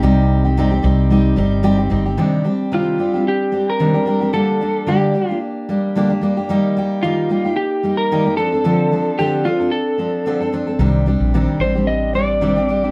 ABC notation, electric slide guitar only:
X:1
M:4/4
L:1/16
Q:"Swing 16ths" 1/4=111
K:Cm
V:1 name="Electric slide guitar"
z16 | [K:Cdor] z4 F4 G3 B4- B | A4 G4 z8 | z4 F4 G3 B3 A2- |
A4 G2 F2 A6 z2 | z6 c2 e2 d6 |]